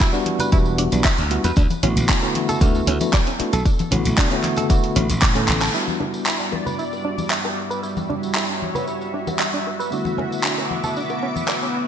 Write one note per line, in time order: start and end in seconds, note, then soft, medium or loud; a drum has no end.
0.00 0.10 G3 medium
0.00 0.10 B3 medium
0.00 0.10 D4 medium
0.00 0.11 E4 medium
0.00 0.11 F#4 medium
0.00 kick loud
0.00 clap loud
0.00 closed hi-hat medium
0.00 tambourine medium
0.13 0.49 G3 medium
0.13 0.49 B3 medium
0.13 0.49 D4 medium
0.13 0.18 D4 medium
0.13 0.50 E4 medium
0.13 0.49 F#4 loud
0.13 tambourine soft
0.26 open hi-hat medium
0.26 high conga medium
0.39 0.50 B4 medium
0.39 closed hi-hat soft
0.39 tambourine medium
0.39 low conga medium
0.52 0.86 E1 medium
0.52 0.89 G3 medium
0.52 0.89 B3 medium
0.52 0.89 D4 medium
0.52 0.57 E4 medium
0.52 0.89 E4 medium
0.52 0.89 F#4 medium
0.52 kick loud
0.52 closed hi-hat medium
0.52 tambourine medium
0.65 tambourine soft
0.78 0.83 D4 loud
0.78 open hi-hat loud
0.92 1.01 B1 medium
0.92 1.03 G3 medium
0.92 1.03 B3 medium
0.92 1.04 D4 medium
0.92 1.04 E4 medium
0.92 1.04 F#4 medium
0.92 closed hi-hat soft
0.92 tambourine medium
0.92 high conga medium
1.04 1.09 E5 medium
1.04 kick loud
1.04 clap loud
1.04 closed hi-hat medium
1.04 tambourine medium
1.18 1.37 D2 medium
1.18 1.22 D4 medium
1.18 closed hi-hat soft
1.18 tambourine soft
1.31 1.49 G3 medium
1.31 1.50 B3 medium
1.31 1.49 D4 medium
1.31 1.50 E4 medium
1.31 1.50 F#4 medium
1.31 open hi-hat medium
1.44 1.53 E2 medium
1.44 1.54 B4 medium
1.44 closed hi-hat soft
1.44 tambourine medium
1.56 1.67 D2 loud
1.56 1.61 D4 medium
1.56 kick loud
1.56 closed hi-hat medium
1.56 tambourine medium
1.70 closed hi-hat soft
1.70 tambourine soft
1.70 high conga medium
1.83 1.93 A1 medium
1.83 2.20 D3 medium
1.83 2.19 A3 medium
1.83 2.20 B3 medium
1.83 1.87 C#4 medium
1.83 2.20 E4 medium
1.83 2.20 F#4 medium
1.83 open hi-hat loud
1.83 low conga medium
1.96 2.06 A1 medium
1.96 closed hi-hat medium
1.96 tambourine medium
2.09 2.20 D4 medium
2.09 kick loud
2.09 clap loud
2.09 closed hi-hat medium
2.09 tambourine medium
2.22 2.58 D3 medium
2.22 2.58 A3 medium
2.22 2.58 B3 medium
2.22 2.27 C#4 medium
2.22 2.58 E4 medium
2.22 2.59 F#4 loud
2.22 tambourine soft
2.35 open hi-hat medium
2.35 high conga medium
2.49 2.58 A4 medium
2.49 closed hi-hat medium
2.49 tambourine medium
2.49 low conga medium
2.61 2.80 D2 medium
2.61 2.98 D3 medium
2.61 2.98 A3 medium
2.61 2.98 B3 medium
2.61 2.66 D4 medium
2.61 2.98 E4 medium
2.61 2.98 F#4 loud
2.61 kick loud
2.61 closed hi-hat medium
2.61 tambourine medium
2.75 tambourine soft
2.87 2.97 D2 medium
2.87 2.92 C#4 loud
2.87 open hi-hat loud
3.00 3.12 A3 medium
3.00 3.12 B3 medium
3.00 3.12 D4 medium
3.00 3.12 E4 medium
3.00 3.12 F#4 medium
3.00 closed hi-hat medium
3.00 tambourine medium
3.00 high conga medium
3.13 3.18 D5 medium
3.13 kick loud
3.13 clap loud
3.13 closed hi-hat medium
3.13 tambourine medium
3.27 3.31 C#4 medium
3.27 closed hi-hat soft
3.27 tambourine soft
3.39 3.58 A3 medium
3.39 3.58 B3 medium
3.39 3.58 D4 medium
3.39 3.58 E4 medium
3.39 3.58 F#4 medium
3.39 muted slap bass stroke soft
3.39 open hi-hat medium
3.53 3.62 B1 medium
3.53 3.63 A4 medium
3.53 closed hi-hat medium
3.53 tambourine medium
3.66 3.70 D4 medium
3.66 kick loud
3.66 closed hi-hat medium
3.66 tambourine medium
3.79 closed hi-hat soft
3.79 tambourine soft
3.79 high conga medium
3.91 4.02 A1 medium
3.91 4.28 D3 medium
3.91 4.28 A3 medium
3.91 4.28 B3 medium
3.91 3.96 C#4 loud
3.91 4.28 E4 medium
3.91 4.29 F#4 medium
3.91 open hi-hat loud
3.91 low conga medium
4.05 4.14 A1 medium
4.05 closed hi-hat medium
4.05 tambourine medium
4.18 4.28 D4 medium
4.18 kick loud
4.18 clap loud
4.18 closed hi-hat medium
4.18 tambourine medium
4.31 4.67 D3 medium
4.31 4.67 A3 medium
4.31 4.67 B3 medium
4.31 4.35 C#4 medium
4.31 4.67 E4 medium
4.31 4.67 F#4 loud
4.31 closed hi-hat soft
4.31 tambourine soft
4.44 clap soft
4.44 open hi-hat medium
4.44 high conga medium
4.57 4.67 A4 medium
4.57 closed hi-hat medium
4.57 tambourine medium
4.57 low conga medium
4.69 5.06 D3 medium
4.69 5.06 A3 medium
4.69 5.06 B3 medium
4.69 4.74 D4 medium
4.69 5.07 E4 medium
4.69 5.07 F#4 loud
4.69 kick loud
4.69 closed hi-hat medium
4.69 tambourine medium
4.84 closed hi-hat soft
4.84 tambourine soft
4.96 5.06 A1 medium
4.96 5.00 C#4 loud
4.96 open hi-hat loud
5.09 5.43 A1 medium
5.09 closed hi-hat medium
5.09 tambourine medium
5.09 high conga medium
5.22 5.26 D5 medium
5.22 kick loud
5.22 clap loud
5.22 closed hi-hat medium
5.22 tambourine medium
5.35 5.73 D3 medium
5.35 5.73 A3 medium
5.35 5.73 B3 medium
5.35 5.39 C#4 medium
5.35 5.73 E4 medium
5.35 5.73 A4 medium
5.35 closed hi-hat soft
5.35 tambourine soft
5.48 5.67 A1 medium
5.48 clap medium
5.48 open hi-hat medium
5.62 5.71 A4 medium
5.62 clap medium
5.62 closed hi-hat medium
5.62 tambourine medium
5.74 9.89 G3 medium
5.74 9.88 G3 medium
5.74 9.89 B3 medium
5.74 9.89 D4 medium
5.74 5.78 E4 medium
5.74 9.89 E4 medium
5.74 11.88 F#4 medium
5.74 9.89 F#4 medium
5.74 7.81 D5 medium
5.74 11.88 E5 medium
5.74 tambourine medium
5.88 tambourine soft
5.88 high conga medium
6.00 6.04 D4 medium
6.00 high bongo soft
6.00 low conga medium
6.14 tambourine medium
6.26 6.37 E4 medium
6.26 clap loud
6.26 tambourine medium
6.40 6.44 D4 medium
6.40 tambourine soft
6.52 high bongo medium
6.52 high conga medium
6.66 6.76 B4 medium
6.66 tambourine medium
6.66 low conga medium
6.79 6.83 E4 medium
6.79 tambourine medium
6.93 tambourine soft
6.93 high bongo soft
7.05 7.09 D4 medium
7.18 tambourine medium
7.18 high conga medium
7.30 7.35 E5 medium
7.30 clap loud
7.30 tambourine medium
7.44 7.48 D4 medium
7.44 tambourine soft
7.44 high bongo medium
7.70 7.80 B4 medium
7.70 tambourine medium
7.83 7.87 E4 medium
7.83 9.90 C#5 medium
7.83 tambourine medium
7.83 high bongo soft
7.97 tambourine soft
7.97 high conga medium
8.09 8.13 D4 medium
8.09 low conga medium
8.23 tambourine medium
8.35 8.45 E4 medium
8.35 clap loud
8.35 tambourine medium
8.35 high bongo medium
8.49 8.53 D4 medium
8.49 tambourine soft
8.62 high conga medium
8.75 8.84 B4 medium
8.75 tambourine medium
8.75 high bongo soft
8.75 low conga medium
8.88 8.92 E4 medium
8.88 tambourine medium
9.01 tambourine soft
9.14 9.18 D4 medium
9.27 tambourine medium
9.27 high bongo medium
9.27 high conga medium
9.39 9.44 E5 medium
9.39 clap loud
9.39 tambourine medium
9.54 9.57 D4 medium
9.54 tambourine soft
9.67 high bongo soft
9.80 9.89 B4 medium
9.80 tambourine medium
9.91 11.88 D3 medium
9.91 11.88 A3 medium
9.91 11.88 B3 medium
9.91 9.96 D4 medium
9.91 11.88 E4 medium
9.91 11.88 F#4 medium
9.91 11.88 D6 medium
9.91 tambourine medium
10.05 tambourine soft
10.05 high conga medium
10.18 10.22 C#4 medium
10.18 high bongo medium
10.18 low conga medium
10.32 tambourine medium
10.44 10.54 D4 medium
10.44 clap loud
10.44 tambourine medium
10.58 10.62 C#4 medium
10.58 tambourine soft
10.58 high bongo soft
10.71 high conga medium
10.84 10.93 A4 medium
10.84 tambourine medium
10.84 low conga medium
10.96 11.01 D4 medium
10.96 tambourine soft
11.10 tambourine soft
11.10 high bongo medium
11.23 11.27 C#4 medium
11.36 tambourine medium
11.36 high conga medium
11.48 11.53 D5 medium
11.48 clap loud
11.48 tambourine medium
11.48 high bongo soft
11.62 11.66 C#4 medium
11.62 tambourine soft